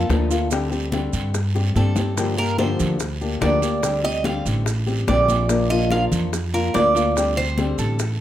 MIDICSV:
0, 0, Header, 1, 6, 480
1, 0, Start_track
1, 0, Tempo, 415512
1, 593, Time_signature, 4, 2, 24, 8
1, 9480, End_track
2, 0, Start_track
2, 0, Title_t, "Cuban tres"
2, 0, Program_c, 0, 25
2, 0, Note_on_c, 0, 69, 81
2, 1027, Note_off_c, 0, 69, 0
2, 2037, Note_on_c, 0, 69, 64
2, 2708, Note_off_c, 0, 69, 0
2, 2753, Note_on_c, 0, 70, 89
2, 2985, Note_off_c, 0, 70, 0
2, 2990, Note_on_c, 0, 72, 68
2, 3223, Note_off_c, 0, 72, 0
2, 3947, Note_on_c, 0, 74, 79
2, 4622, Note_off_c, 0, 74, 0
2, 4672, Note_on_c, 0, 75, 100
2, 4904, Note_off_c, 0, 75, 0
2, 4911, Note_on_c, 0, 77, 78
2, 5144, Note_off_c, 0, 77, 0
2, 5869, Note_on_c, 0, 74, 68
2, 6544, Note_off_c, 0, 74, 0
2, 6586, Note_on_c, 0, 75, 97
2, 6821, Note_off_c, 0, 75, 0
2, 6832, Note_on_c, 0, 77, 77
2, 6976, Note_off_c, 0, 77, 0
2, 7556, Note_on_c, 0, 70, 85
2, 7786, Note_off_c, 0, 70, 0
2, 7788, Note_on_c, 0, 74, 83
2, 8464, Note_off_c, 0, 74, 0
2, 8516, Note_on_c, 0, 72, 96
2, 8961, Note_off_c, 0, 72, 0
2, 8996, Note_on_c, 0, 69, 67
2, 9480, Note_off_c, 0, 69, 0
2, 9480, End_track
3, 0, Start_track
3, 0, Title_t, "Nylon-string guitar"
3, 0, Program_c, 1, 24
3, 112, Note_on_c, 1, 53, 78
3, 121, Note_on_c, 1, 58, 69
3, 123, Note_on_c, 1, 62, 83
3, 131, Note_on_c, 1, 65, 73
3, 336, Note_off_c, 1, 65, 0
3, 342, Note_off_c, 1, 53, 0
3, 347, Note_off_c, 1, 58, 0
3, 348, Note_off_c, 1, 62, 0
3, 350, Note_on_c, 1, 65, 46
3, 360, Note_on_c, 1, 62, 46
3, 369, Note_on_c, 1, 58, 38
3, 581, Note_off_c, 1, 65, 0
3, 584, Note_on_c, 1, 50, 71
3, 586, Note_off_c, 1, 62, 0
3, 587, Note_off_c, 1, 58, 0
3, 592, Note_on_c, 1, 55, 67
3, 598, Note_on_c, 1, 60, 81
3, 602, Note_on_c, 1, 67, 78
3, 809, Note_off_c, 1, 67, 0
3, 818, Note_off_c, 1, 50, 0
3, 820, Note_off_c, 1, 60, 0
3, 822, Note_off_c, 1, 55, 0
3, 823, Note_on_c, 1, 67, 49
3, 834, Note_on_c, 1, 60, 44
3, 841, Note_on_c, 1, 55, 37
3, 1053, Note_off_c, 1, 55, 0
3, 1056, Note_on_c, 1, 50, 69
3, 1058, Note_off_c, 1, 67, 0
3, 1059, Note_off_c, 1, 60, 0
3, 1066, Note_on_c, 1, 55, 75
3, 1073, Note_on_c, 1, 60, 75
3, 1073, Note_on_c, 1, 67, 73
3, 1534, Note_off_c, 1, 50, 0
3, 1539, Note_off_c, 1, 55, 0
3, 1542, Note_off_c, 1, 67, 0
3, 1543, Note_off_c, 1, 60, 0
3, 1788, Note_on_c, 1, 67, 46
3, 1797, Note_on_c, 1, 60, 44
3, 1804, Note_on_c, 1, 55, 40
3, 2015, Note_off_c, 1, 55, 0
3, 2020, Note_off_c, 1, 67, 0
3, 2022, Note_on_c, 1, 50, 70
3, 2024, Note_off_c, 1, 60, 0
3, 2029, Note_on_c, 1, 55, 68
3, 2039, Note_on_c, 1, 60, 73
3, 2042, Note_on_c, 1, 67, 76
3, 2252, Note_off_c, 1, 67, 0
3, 2257, Note_off_c, 1, 50, 0
3, 2258, Note_off_c, 1, 60, 0
3, 2260, Note_off_c, 1, 55, 0
3, 2266, Note_on_c, 1, 67, 47
3, 2272, Note_on_c, 1, 60, 45
3, 2283, Note_on_c, 1, 55, 39
3, 2493, Note_on_c, 1, 50, 61
3, 2499, Note_off_c, 1, 67, 0
3, 2500, Note_off_c, 1, 55, 0
3, 2502, Note_off_c, 1, 60, 0
3, 2504, Note_on_c, 1, 53, 72
3, 2505, Note_on_c, 1, 58, 70
3, 2510, Note_on_c, 1, 62, 78
3, 2516, Note_on_c, 1, 67, 81
3, 2727, Note_off_c, 1, 67, 0
3, 2732, Note_off_c, 1, 50, 0
3, 2738, Note_off_c, 1, 53, 0
3, 2738, Note_off_c, 1, 58, 0
3, 2741, Note_off_c, 1, 62, 0
3, 2741, Note_on_c, 1, 67, 48
3, 2755, Note_on_c, 1, 62, 42
3, 2760, Note_on_c, 1, 58, 42
3, 2971, Note_off_c, 1, 58, 0
3, 2974, Note_off_c, 1, 62, 0
3, 2976, Note_off_c, 1, 67, 0
3, 2977, Note_on_c, 1, 50, 66
3, 2980, Note_on_c, 1, 53, 77
3, 2985, Note_on_c, 1, 58, 73
3, 2988, Note_on_c, 1, 62, 84
3, 2992, Note_on_c, 1, 67, 83
3, 3454, Note_off_c, 1, 50, 0
3, 3456, Note_off_c, 1, 53, 0
3, 3458, Note_off_c, 1, 58, 0
3, 3460, Note_off_c, 1, 62, 0
3, 3462, Note_off_c, 1, 67, 0
3, 3711, Note_on_c, 1, 67, 52
3, 3719, Note_on_c, 1, 62, 46
3, 3728, Note_on_c, 1, 58, 39
3, 3930, Note_off_c, 1, 58, 0
3, 3933, Note_on_c, 1, 50, 73
3, 3938, Note_off_c, 1, 62, 0
3, 3940, Note_on_c, 1, 53, 69
3, 3941, Note_off_c, 1, 67, 0
3, 3944, Note_on_c, 1, 58, 76
3, 3951, Note_on_c, 1, 62, 73
3, 3954, Note_on_c, 1, 67, 78
3, 4166, Note_off_c, 1, 67, 0
3, 4172, Note_off_c, 1, 50, 0
3, 4176, Note_off_c, 1, 53, 0
3, 4178, Note_off_c, 1, 58, 0
3, 4178, Note_off_c, 1, 62, 0
3, 4180, Note_on_c, 1, 67, 49
3, 4192, Note_on_c, 1, 62, 45
3, 4201, Note_on_c, 1, 58, 41
3, 4416, Note_off_c, 1, 67, 0
3, 4418, Note_on_c, 1, 50, 79
3, 4421, Note_off_c, 1, 58, 0
3, 4422, Note_off_c, 1, 62, 0
3, 4426, Note_on_c, 1, 55, 72
3, 4427, Note_on_c, 1, 60, 78
3, 4436, Note_on_c, 1, 67, 75
3, 4651, Note_off_c, 1, 67, 0
3, 4655, Note_off_c, 1, 50, 0
3, 4659, Note_off_c, 1, 55, 0
3, 4659, Note_off_c, 1, 60, 0
3, 4665, Note_on_c, 1, 67, 50
3, 4674, Note_on_c, 1, 60, 47
3, 4681, Note_on_c, 1, 55, 37
3, 4898, Note_off_c, 1, 67, 0
3, 4903, Note_off_c, 1, 60, 0
3, 4906, Note_off_c, 1, 55, 0
3, 4913, Note_on_c, 1, 50, 76
3, 4920, Note_on_c, 1, 55, 79
3, 4928, Note_on_c, 1, 60, 73
3, 4932, Note_on_c, 1, 67, 73
3, 5370, Note_off_c, 1, 50, 0
3, 5370, Note_off_c, 1, 55, 0
3, 5376, Note_off_c, 1, 60, 0
3, 5379, Note_off_c, 1, 67, 0
3, 5620, Note_on_c, 1, 67, 49
3, 5631, Note_on_c, 1, 60, 47
3, 5640, Note_on_c, 1, 55, 40
3, 5856, Note_off_c, 1, 67, 0
3, 5860, Note_off_c, 1, 55, 0
3, 5861, Note_off_c, 1, 60, 0
3, 5864, Note_on_c, 1, 50, 69
3, 5874, Note_on_c, 1, 55, 86
3, 5878, Note_on_c, 1, 60, 89
3, 5887, Note_on_c, 1, 67, 77
3, 6094, Note_off_c, 1, 67, 0
3, 6098, Note_off_c, 1, 50, 0
3, 6103, Note_off_c, 1, 55, 0
3, 6105, Note_off_c, 1, 60, 0
3, 6108, Note_on_c, 1, 67, 47
3, 6119, Note_on_c, 1, 60, 44
3, 6130, Note_on_c, 1, 55, 43
3, 6340, Note_off_c, 1, 67, 0
3, 6340, Note_on_c, 1, 53, 66
3, 6345, Note_off_c, 1, 60, 0
3, 6346, Note_off_c, 1, 55, 0
3, 6351, Note_on_c, 1, 58, 80
3, 6357, Note_on_c, 1, 62, 76
3, 6362, Note_on_c, 1, 65, 72
3, 6576, Note_off_c, 1, 53, 0
3, 6577, Note_off_c, 1, 65, 0
3, 6581, Note_off_c, 1, 58, 0
3, 6584, Note_off_c, 1, 62, 0
3, 6591, Note_on_c, 1, 65, 51
3, 6602, Note_on_c, 1, 62, 44
3, 6606, Note_on_c, 1, 58, 44
3, 6821, Note_off_c, 1, 58, 0
3, 6821, Note_off_c, 1, 65, 0
3, 6827, Note_off_c, 1, 62, 0
3, 6827, Note_on_c, 1, 53, 79
3, 6835, Note_on_c, 1, 58, 83
3, 6844, Note_on_c, 1, 62, 78
3, 6850, Note_on_c, 1, 65, 77
3, 7300, Note_off_c, 1, 53, 0
3, 7304, Note_off_c, 1, 58, 0
3, 7304, Note_off_c, 1, 62, 0
3, 7311, Note_off_c, 1, 65, 0
3, 7550, Note_on_c, 1, 65, 50
3, 7558, Note_on_c, 1, 62, 43
3, 7569, Note_on_c, 1, 58, 39
3, 7781, Note_off_c, 1, 65, 0
3, 7784, Note_off_c, 1, 58, 0
3, 7785, Note_off_c, 1, 62, 0
3, 7790, Note_on_c, 1, 53, 71
3, 7798, Note_on_c, 1, 58, 78
3, 7805, Note_on_c, 1, 65, 82
3, 7806, Note_on_c, 1, 62, 83
3, 8006, Note_off_c, 1, 65, 0
3, 8017, Note_off_c, 1, 62, 0
3, 8019, Note_on_c, 1, 65, 47
3, 8021, Note_off_c, 1, 53, 0
3, 8025, Note_off_c, 1, 58, 0
3, 8031, Note_on_c, 1, 62, 47
3, 8041, Note_on_c, 1, 58, 38
3, 8256, Note_off_c, 1, 65, 0
3, 8262, Note_off_c, 1, 62, 0
3, 8267, Note_off_c, 1, 58, 0
3, 8267, Note_on_c, 1, 50, 66
3, 8278, Note_on_c, 1, 60, 74
3, 8279, Note_on_c, 1, 55, 82
3, 8283, Note_on_c, 1, 67, 75
3, 8500, Note_off_c, 1, 50, 0
3, 8505, Note_off_c, 1, 55, 0
3, 8505, Note_off_c, 1, 60, 0
3, 8507, Note_off_c, 1, 67, 0
3, 8522, Note_on_c, 1, 67, 47
3, 8529, Note_on_c, 1, 60, 39
3, 8538, Note_on_c, 1, 55, 40
3, 8747, Note_off_c, 1, 67, 0
3, 8751, Note_off_c, 1, 60, 0
3, 8755, Note_off_c, 1, 55, 0
3, 8757, Note_on_c, 1, 50, 79
3, 8768, Note_on_c, 1, 55, 76
3, 8774, Note_on_c, 1, 60, 85
3, 8777, Note_on_c, 1, 67, 76
3, 9225, Note_off_c, 1, 50, 0
3, 9227, Note_off_c, 1, 55, 0
3, 9230, Note_off_c, 1, 60, 0
3, 9235, Note_off_c, 1, 67, 0
3, 9480, End_track
4, 0, Start_track
4, 0, Title_t, "Upright bass"
4, 0, Program_c, 2, 32
4, 108, Note_on_c, 2, 38, 93
4, 1239, Note_off_c, 2, 38, 0
4, 1308, Note_on_c, 2, 43, 98
4, 1983, Note_off_c, 2, 43, 0
4, 2024, Note_on_c, 2, 43, 82
4, 3157, Note_off_c, 2, 43, 0
4, 3228, Note_on_c, 2, 38, 93
4, 3903, Note_off_c, 2, 38, 0
4, 3948, Note_on_c, 2, 38, 85
4, 5079, Note_off_c, 2, 38, 0
4, 5145, Note_on_c, 2, 33, 94
4, 5822, Note_off_c, 2, 33, 0
4, 5869, Note_on_c, 2, 34, 96
4, 7000, Note_off_c, 2, 34, 0
4, 7069, Note_on_c, 2, 41, 88
4, 7744, Note_off_c, 2, 41, 0
4, 7793, Note_on_c, 2, 38, 90
4, 8922, Note_off_c, 2, 38, 0
4, 8990, Note_on_c, 2, 33, 91
4, 9480, Note_off_c, 2, 33, 0
4, 9480, End_track
5, 0, Start_track
5, 0, Title_t, "Muted nylon-string guitar strokes"
5, 1552, Note_on_c, 9, 29, 58
5, 1667, Note_off_c, 9, 29, 0
5, 3468, Note_on_c, 9, 29, 54
5, 3584, Note_off_c, 9, 29, 0
5, 5383, Note_on_c, 9, 29, 55
5, 5499, Note_off_c, 9, 29, 0
5, 7313, Note_on_c, 9, 29, 51
5, 7428, Note_off_c, 9, 29, 0
5, 9239, Note_on_c, 9, 29, 51
5, 9355, Note_off_c, 9, 29, 0
5, 9480, End_track
6, 0, Start_track
6, 0, Title_t, "Drums"
6, 109, Note_on_c, 9, 73, 70
6, 115, Note_on_c, 9, 70, 29
6, 117, Note_on_c, 9, 60, 67
6, 117, Note_on_c, 9, 61, 88
6, 224, Note_off_c, 9, 73, 0
6, 231, Note_off_c, 9, 70, 0
6, 233, Note_off_c, 9, 60, 0
6, 233, Note_off_c, 9, 61, 0
6, 356, Note_on_c, 9, 70, 77
6, 356, Note_on_c, 9, 73, 71
6, 363, Note_on_c, 9, 63, 36
6, 367, Note_on_c, 9, 60, 35
6, 471, Note_off_c, 9, 70, 0
6, 471, Note_off_c, 9, 73, 0
6, 478, Note_off_c, 9, 63, 0
6, 483, Note_off_c, 9, 60, 0
6, 585, Note_on_c, 9, 74, 66
6, 588, Note_on_c, 9, 70, 90
6, 603, Note_on_c, 9, 63, 34
6, 609, Note_on_c, 9, 60, 74
6, 700, Note_off_c, 9, 74, 0
6, 704, Note_off_c, 9, 70, 0
6, 718, Note_off_c, 9, 63, 0
6, 725, Note_off_c, 9, 60, 0
6, 831, Note_on_c, 9, 70, 31
6, 832, Note_on_c, 9, 63, 37
6, 840, Note_on_c, 9, 60, 33
6, 947, Note_off_c, 9, 63, 0
6, 947, Note_off_c, 9, 70, 0
6, 955, Note_off_c, 9, 60, 0
6, 1065, Note_on_c, 9, 63, 98
6, 1065, Note_on_c, 9, 70, 31
6, 1069, Note_on_c, 9, 73, 73
6, 1081, Note_on_c, 9, 60, 60
6, 1180, Note_off_c, 9, 63, 0
6, 1181, Note_off_c, 9, 70, 0
6, 1184, Note_off_c, 9, 73, 0
6, 1196, Note_off_c, 9, 60, 0
6, 1305, Note_on_c, 9, 70, 68
6, 1311, Note_on_c, 9, 73, 73
6, 1315, Note_on_c, 9, 63, 36
6, 1421, Note_off_c, 9, 70, 0
6, 1427, Note_off_c, 9, 73, 0
6, 1430, Note_off_c, 9, 63, 0
6, 1552, Note_on_c, 9, 70, 79
6, 1552, Note_on_c, 9, 74, 73
6, 1554, Note_on_c, 9, 60, 62
6, 1556, Note_on_c, 9, 63, 30
6, 1668, Note_off_c, 9, 70, 0
6, 1668, Note_off_c, 9, 74, 0
6, 1670, Note_off_c, 9, 60, 0
6, 1672, Note_off_c, 9, 63, 0
6, 1796, Note_on_c, 9, 70, 28
6, 1798, Note_on_c, 9, 60, 69
6, 1799, Note_on_c, 9, 63, 37
6, 1911, Note_off_c, 9, 70, 0
6, 1914, Note_off_c, 9, 60, 0
6, 1915, Note_off_c, 9, 63, 0
6, 2030, Note_on_c, 9, 73, 66
6, 2031, Note_on_c, 9, 70, 30
6, 2033, Note_on_c, 9, 63, 80
6, 2145, Note_off_c, 9, 73, 0
6, 2147, Note_off_c, 9, 70, 0
6, 2149, Note_off_c, 9, 63, 0
6, 2260, Note_on_c, 9, 61, 93
6, 2261, Note_on_c, 9, 73, 76
6, 2265, Note_on_c, 9, 70, 72
6, 2270, Note_on_c, 9, 63, 92
6, 2376, Note_off_c, 9, 61, 0
6, 2376, Note_off_c, 9, 73, 0
6, 2381, Note_off_c, 9, 70, 0
6, 2386, Note_off_c, 9, 63, 0
6, 2508, Note_on_c, 9, 74, 73
6, 2511, Note_on_c, 9, 70, 88
6, 2513, Note_on_c, 9, 60, 69
6, 2519, Note_on_c, 9, 63, 32
6, 2624, Note_off_c, 9, 74, 0
6, 2627, Note_off_c, 9, 70, 0
6, 2629, Note_off_c, 9, 60, 0
6, 2634, Note_off_c, 9, 63, 0
6, 2747, Note_on_c, 9, 60, 36
6, 2757, Note_on_c, 9, 70, 28
6, 2761, Note_on_c, 9, 63, 32
6, 2863, Note_off_c, 9, 60, 0
6, 2873, Note_off_c, 9, 70, 0
6, 2876, Note_off_c, 9, 63, 0
6, 2986, Note_on_c, 9, 63, 92
6, 2990, Note_on_c, 9, 73, 69
6, 2992, Note_on_c, 9, 60, 61
6, 2993, Note_on_c, 9, 70, 30
6, 3101, Note_off_c, 9, 63, 0
6, 3106, Note_off_c, 9, 73, 0
6, 3107, Note_off_c, 9, 60, 0
6, 3108, Note_off_c, 9, 70, 0
6, 3229, Note_on_c, 9, 70, 74
6, 3229, Note_on_c, 9, 73, 70
6, 3234, Note_on_c, 9, 60, 35
6, 3235, Note_on_c, 9, 63, 35
6, 3235, Note_on_c, 9, 64, 83
6, 3345, Note_off_c, 9, 70, 0
6, 3345, Note_off_c, 9, 73, 0
6, 3349, Note_off_c, 9, 60, 0
6, 3350, Note_off_c, 9, 63, 0
6, 3350, Note_off_c, 9, 64, 0
6, 3461, Note_on_c, 9, 70, 79
6, 3467, Note_on_c, 9, 74, 64
6, 3472, Note_on_c, 9, 60, 61
6, 3478, Note_on_c, 9, 63, 34
6, 3576, Note_off_c, 9, 70, 0
6, 3582, Note_off_c, 9, 74, 0
6, 3588, Note_off_c, 9, 60, 0
6, 3593, Note_off_c, 9, 63, 0
6, 3711, Note_on_c, 9, 70, 29
6, 3712, Note_on_c, 9, 63, 34
6, 3827, Note_off_c, 9, 63, 0
6, 3827, Note_off_c, 9, 70, 0
6, 3944, Note_on_c, 9, 73, 71
6, 3948, Note_on_c, 9, 60, 68
6, 3948, Note_on_c, 9, 61, 82
6, 3948, Note_on_c, 9, 70, 29
6, 3953, Note_on_c, 9, 63, 37
6, 4059, Note_off_c, 9, 73, 0
6, 4064, Note_off_c, 9, 60, 0
6, 4064, Note_off_c, 9, 61, 0
6, 4064, Note_off_c, 9, 70, 0
6, 4069, Note_off_c, 9, 63, 0
6, 4184, Note_on_c, 9, 73, 75
6, 4191, Note_on_c, 9, 70, 68
6, 4193, Note_on_c, 9, 60, 36
6, 4193, Note_on_c, 9, 63, 37
6, 4299, Note_off_c, 9, 73, 0
6, 4306, Note_off_c, 9, 70, 0
6, 4309, Note_off_c, 9, 60, 0
6, 4309, Note_off_c, 9, 63, 0
6, 4421, Note_on_c, 9, 74, 79
6, 4427, Note_on_c, 9, 60, 69
6, 4429, Note_on_c, 9, 70, 93
6, 4434, Note_on_c, 9, 63, 34
6, 4536, Note_off_c, 9, 74, 0
6, 4542, Note_off_c, 9, 60, 0
6, 4544, Note_off_c, 9, 70, 0
6, 4550, Note_off_c, 9, 63, 0
6, 4670, Note_on_c, 9, 63, 35
6, 4672, Note_on_c, 9, 70, 31
6, 4673, Note_on_c, 9, 60, 34
6, 4786, Note_off_c, 9, 63, 0
6, 4788, Note_off_c, 9, 60, 0
6, 4788, Note_off_c, 9, 70, 0
6, 4901, Note_on_c, 9, 63, 91
6, 4908, Note_on_c, 9, 73, 72
6, 4911, Note_on_c, 9, 60, 62
6, 4918, Note_on_c, 9, 70, 28
6, 5016, Note_off_c, 9, 63, 0
6, 5023, Note_off_c, 9, 73, 0
6, 5027, Note_off_c, 9, 60, 0
6, 5033, Note_off_c, 9, 70, 0
6, 5146, Note_on_c, 9, 63, 33
6, 5153, Note_on_c, 9, 70, 67
6, 5153, Note_on_c, 9, 73, 67
6, 5261, Note_off_c, 9, 63, 0
6, 5269, Note_off_c, 9, 70, 0
6, 5269, Note_off_c, 9, 73, 0
6, 5383, Note_on_c, 9, 63, 32
6, 5384, Note_on_c, 9, 60, 66
6, 5394, Note_on_c, 9, 74, 66
6, 5397, Note_on_c, 9, 70, 80
6, 5498, Note_off_c, 9, 63, 0
6, 5500, Note_off_c, 9, 60, 0
6, 5510, Note_off_c, 9, 74, 0
6, 5512, Note_off_c, 9, 70, 0
6, 5622, Note_on_c, 9, 63, 33
6, 5627, Note_on_c, 9, 60, 32
6, 5633, Note_on_c, 9, 70, 30
6, 5737, Note_off_c, 9, 63, 0
6, 5742, Note_off_c, 9, 60, 0
6, 5749, Note_off_c, 9, 70, 0
6, 5862, Note_on_c, 9, 63, 73
6, 5868, Note_on_c, 9, 60, 74
6, 5868, Note_on_c, 9, 61, 90
6, 5871, Note_on_c, 9, 70, 32
6, 5876, Note_on_c, 9, 73, 72
6, 5978, Note_off_c, 9, 63, 0
6, 5984, Note_off_c, 9, 60, 0
6, 5984, Note_off_c, 9, 61, 0
6, 5987, Note_off_c, 9, 70, 0
6, 5992, Note_off_c, 9, 73, 0
6, 6103, Note_on_c, 9, 63, 84
6, 6107, Note_on_c, 9, 73, 72
6, 6115, Note_on_c, 9, 70, 69
6, 6117, Note_on_c, 9, 60, 34
6, 6219, Note_off_c, 9, 63, 0
6, 6223, Note_off_c, 9, 73, 0
6, 6231, Note_off_c, 9, 70, 0
6, 6233, Note_off_c, 9, 60, 0
6, 6346, Note_on_c, 9, 60, 73
6, 6347, Note_on_c, 9, 70, 87
6, 6349, Note_on_c, 9, 74, 75
6, 6352, Note_on_c, 9, 63, 32
6, 6462, Note_off_c, 9, 60, 0
6, 6462, Note_off_c, 9, 70, 0
6, 6465, Note_off_c, 9, 74, 0
6, 6468, Note_off_c, 9, 63, 0
6, 6588, Note_on_c, 9, 63, 36
6, 6592, Note_on_c, 9, 60, 35
6, 6606, Note_on_c, 9, 70, 28
6, 6704, Note_off_c, 9, 63, 0
6, 6707, Note_off_c, 9, 60, 0
6, 6721, Note_off_c, 9, 70, 0
6, 6822, Note_on_c, 9, 63, 100
6, 6832, Note_on_c, 9, 60, 62
6, 6832, Note_on_c, 9, 73, 67
6, 6839, Note_on_c, 9, 70, 32
6, 6937, Note_off_c, 9, 63, 0
6, 6947, Note_off_c, 9, 60, 0
6, 6947, Note_off_c, 9, 73, 0
6, 6954, Note_off_c, 9, 70, 0
6, 7066, Note_on_c, 9, 63, 33
6, 7066, Note_on_c, 9, 64, 86
6, 7072, Note_on_c, 9, 70, 71
6, 7072, Note_on_c, 9, 73, 72
6, 7074, Note_on_c, 9, 60, 34
6, 7181, Note_off_c, 9, 63, 0
6, 7181, Note_off_c, 9, 64, 0
6, 7188, Note_off_c, 9, 70, 0
6, 7188, Note_off_c, 9, 73, 0
6, 7190, Note_off_c, 9, 60, 0
6, 7310, Note_on_c, 9, 63, 32
6, 7313, Note_on_c, 9, 60, 66
6, 7314, Note_on_c, 9, 74, 71
6, 7316, Note_on_c, 9, 70, 85
6, 7425, Note_off_c, 9, 63, 0
6, 7429, Note_off_c, 9, 60, 0
6, 7430, Note_off_c, 9, 74, 0
6, 7431, Note_off_c, 9, 70, 0
6, 7555, Note_on_c, 9, 63, 35
6, 7568, Note_on_c, 9, 70, 31
6, 7671, Note_off_c, 9, 63, 0
6, 7684, Note_off_c, 9, 70, 0
6, 7793, Note_on_c, 9, 73, 74
6, 7797, Note_on_c, 9, 60, 70
6, 7797, Note_on_c, 9, 61, 86
6, 7798, Note_on_c, 9, 63, 32
6, 7810, Note_on_c, 9, 70, 29
6, 7909, Note_off_c, 9, 73, 0
6, 7912, Note_off_c, 9, 60, 0
6, 7912, Note_off_c, 9, 61, 0
6, 7913, Note_off_c, 9, 63, 0
6, 7925, Note_off_c, 9, 70, 0
6, 8029, Note_on_c, 9, 73, 74
6, 8043, Note_on_c, 9, 60, 34
6, 8044, Note_on_c, 9, 63, 33
6, 8046, Note_on_c, 9, 70, 65
6, 8144, Note_off_c, 9, 73, 0
6, 8159, Note_off_c, 9, 60, 0
6, 8160, Note_off_c, 9, 63, 0
6, 8162, Note_off_c, 9, 70, 0
6, 8269, Note_on_c, 9, 74, 74
6, 8282, Note_on_c, 9, 60, 67
6, 8286, Note_on_c, 9, 63, 31
6, 8286, Note_on_c, 9, 70, 87
6, 8385, Note_off_c, 9, 74, 0
6, 8397, Note_off_c, 9, 60, 0
6, 8401, Note_off_c, 9, 63, 0
6, 8401, Note_off_c, 9, 70, 0
6, 8519, Note_on_c, 9, 60, 38
6, 8522, Note_on_c, 9, 63, 36
6, 8530, Note_on_c, 9, 70, 29
6, 8634, Note_off_c, 9, 60, 0
6, 8638, Note_off_c, 9, 63, 0
6, 8645, Note_off_c, 9, 70, 0
6, 8751, Note_on_c, 9, 73, 66
6, 8752, Note_on_c, 9, 63, 93
6, 8759, Note_on_c, 9, 70, 28
6, 8765, Note_on_c, 9, 60, 58
6, 8867, Note_off_c, 9, 73, 0
6, 8868, Note_off_c, 9, 63, 0
6, 8874, Note_off_c, 9, 70, 0
6, 8880, Note_off_c, 9, 60, 0
6, 8991, Note_on_c, 9, 70, 72
6, 8992, Note_on_c, 9, 63, 37
6, 8994, Note_on_c, 9, 73, 70
6, 9106, Note_off_c, 9, 70, 0
6, 9107, Note_off_c, 9, 63, 0
6, 9110, Note_off_c, 9, 73, 0
6, 9232, Note_on_c, 9, 70, 90
6, 9232, Note_on_c, 9, 74, 67
6, 9233, Note_on_c, 9, 63, 33
6, 9239, Note_on_c, 9, 60, 62
6, 9348, Note_off_c, 9, 70, 0
6, 9348, Note_off_c, 9, 74, 0
6, 9349, Note_off_c, 9, 63, 0
6, 9354, Note_off_c, 9, 60, 0
6, 9480, End_track
0, 0, End_of_file